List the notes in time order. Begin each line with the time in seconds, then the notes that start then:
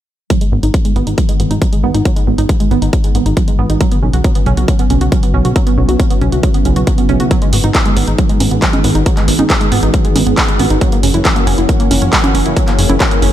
0.30 F#3, kick, closed hi-hat
0.41 D#3 G#3 B3 F#4, closed hi-hat
0.52 G#1 D#3 G#3 B3 F#4
0.63 G#1 D#4, closed hi-hat
0.74 D#3 F#3 G#3 B3 F#4, kick, closed hi-hat
0.85 G#3, closed hi-hat
0.96 G#1 D#3 G#3 B3 F#4, closed hi-hat
1.07 G#1 D#3 G#3 B3 D#4 F#4, closed hi-hat
1.18 D#3 F#3 G#3 B3 F#4, kick, closed hi-hat
1.29 G#3, closed hi-hat
1.40 G#1 D#3 G#3 B3 F#4, closed hi-hat
1.51 G#1 D#4, closed hi-hat
1.62 D#3 F#3 G#3 B3 F#4, kick, closed hi-hat
1.73 G#3, closed hi-hat
1.83 G#1 D#3 G#3 B3 F#4
1.94 G#1 D#4, closed hi-hat
2.05 D#3 F#3 G#3 B3 F#4, kick, closed hi-hat
2.16 D#3 G#3 B3 F#4, closed hi-hat
2.27 G#1 D#3 G#3 B3 F#4
2.38 G#1 D#4, closed hi-hat
2.49 D#3 F#3 G#3 B3 F#4, kick, closed hi-hat
2.60 G#3, closed hi-hat
2.71 G#1 D#3 G#3 B3 F#4, closed hi-hat
2.82 G#1 D#3 G#3 B3 D#4 F#4, closed hi-hat
2.93 D#3 F#3 G#3 B3 F#4, kick, closed hi-hat
3.04 G#3, closed hi-hat
3.15 G#1 D#3 G#3 B3 F#4, closed hi-hat
3.26 G#1 D#4, closed hi-hat
3.37 D#3 F#3 G#3 B3 F#4, kick, closed hi-hat
3.48 G#3, closed hi-hat
3.59 G#1 D#3 G#3 B3 F#4
3.70 G#1 D#4, closed hi-hat
3.81 C#3 F#3 B3 F#4, kick, closed hi-hat
3.92 C#3 F#3 B3 F#4, closed hi-hat
4.02 B1 C#3 F#3 B3 C#4 F#4
4.13 B1 F#4, closed hi-hat
4.24 C#3 F#3 B3 F#4, kick, closed hi-hat
4.35 B3, closed hi-hat
4.46 B1 C#3 F#3 B3 C#4 F#4, closed hi-hat
4.57 B1 C#3 F#3 B3 F#4, closed hi-hat
4.68 C#3 F#3 B3 F#4, kick, closed hi-hat
4.79 B3, closed hi-hat
4.90 B1 C#3 F#3 B3 C#4 F#4, closed hi-hat
5.01 B1 F#4, closed hi-hat
5.12 C#3 F#3 B3 F#4, kick, closed hi-hat
5.23 B3, closed hi-hat
5.34 B1 C#3 F#3 B3 C#4 F#4
5.45 B1 F#4, closed hi-hat
5.56 C#3 F#3 B3 E4, kick, closed hi-hat
5.67 C#3 F#3 B3 E4, closed hi-hat
5.78 B1 C#3 F#3 B3 C#4 E4
5.89 B1 F#4, closed hi-hat
5.99 C#3 F#3 B3 E4, kick, closed hi-hat
6.10 B3, closed hi-hat
6.21 B1 C#3 F#3 B3 C#4 E4, closed hi-hat
6.32 B1 C#3 F#3 B3 E4 F#4, closed hi-hat
6.43 C#3 F#3 B3 E4, kick, closed hi-hat
6.54 B3, closed hi-hat
6.65 B1 C#3 F#3 B3 C#4 E4, closed hi-hat
6.76 B1 F#4, closed hi-hat
6.87 C#3 F#3 B3 E4, kick, closed hi-hat
6.98 B3, closed hi-hat
7.09 B1 C#3 F#3 B3 C#4 E4, closed hi-hat
7.20 B1 F#4, closed hi-hat
7.31 D#3 F#3 G#3 B3 F#4, kick, closed hi-hat
7.42 D#3 G#3 B3 F#4, closed hi-hat
7.53 G#1 D#3 G#3 B3 F#4, open hi-hat
7.64 G#1 D#4, closed hi-hat
7.75 D#3 F#3 G#3 B3 F#4, kick, clap, closed hi-hat
7.86 G#3, closed hi-hat
7.97 G#1 D#3 G#3 B3 F#4, open hi-hat
8.07 G#1 D#3 G#3 B3 D#4 F#4, closed hi-hat
8.18 D#3 F#3 G#3 B3 F#4, kick, closed hi-hat
8.29 G#3, closed hi-hat
8.40 G#1 D#3 G#3 B3 F#4, open hi-hat, high conga
8.51 G#1 B3, closed hi-hat
8.62 D#3 F#3 G#3 B3 F#4, kick, clap, closed hi-hat
8.73 G#3, closed hi-hat, high conga
8.84 G#1 D#3 G#3 B3 F#4, open hi-hat
8.95 G#1 D#4, closed hi-hat
9.06 D#3 F#3 G#3 B3 F#4, kick, closed hi-hat
9.17 D#3 G#3 B3 F#4, clap, closed hi-hat
9.28 G#1 D#3 G#3 B3 F#4, open hi-hat
9.39 G#1 D#4, closed hi-hat, high conga
9.50 D#3 F#3 G#3 B3 F#4, kick, clap, closed hi-hat
9.61 G#3, closed hi-hat
9.72 G#1 D#3 G#3 B3 F#4, open hi-hat
9.83 G#1 D#3 G#3 B3 D#4 F#4, closed hi-hat
9.94 D#3 F#3 G#3 B3 F#4, kick, closed hi-hat
10.05 G#3, closed hi-hat
10.16 G#1 D#3 G#3 B3 F#4, open hi-hat, high conga
10.27 G#1 B3, closed hi-hat
10.38 D#3 F#3 G#3 B3 F#4, kick, clap, closed hi-hat
10.48 G#3, closed hi-hat
10.59 G#1 D#3 G#3 B3 F#4, open hi-hat, high conga
10.70 G#1 D#4, closed hi-hat
10.81 E3 F#3 A#3 C#4 F#4, kick, closed hi-hat
10.92 E3 A#3 C#4 F#4, closed hi-hat
11.03 F#1 E3 A#3 C#4 F#4, open hi-hat
11.14 F#1 E4, closed hi-hat
11.25 E3 F#3 A#3 C#4 F#4, kick, clap, closed hi-hat
11.36 A#3, closed hi-hat
11.47 F#1 E3 A#3 C#4 F#4, open hi-hat
11.58 F#1 E3 A#3 C#4 E4 F#4, closed hi-hat
11.69 E3 F#3 A#3 C#4 F#4, kick, closed hi-hat
11.80 A#3, closed hi-hat
11.91 F#1 E3 A#3 C#4 F#4, open hi-hat, high conga
12.02 F#1 C#4, closed hi-hat
12.13 E3 F#3 A#3 C#4 F#4, kick, clap, closed hi-hat
12.24 A#3, closed hi-hat, high conga
12.35 F#1 E3 A#3 C#4 F#4, open hi-hat
12.45 F#1 E4, closed hi-hat
12.57 E3 F#3 A#3 C#4 G#4, kick, closed hi-hat
12.67 E3 A#3 C#4 G#4, clap, closed hi-hat
12.78 F#1 E3 A#3 C#4 G#4, open hi-hat
12.89 F#1 E4, closed hi-hat, high conga
13.00 E3 F#3 A#3 C#4 G#4, kick, clap, closed hi-hat
13.11 A#3, closed hi-hat
13.22 F#1 E3 A#3 C#4 G#4, open hi-hat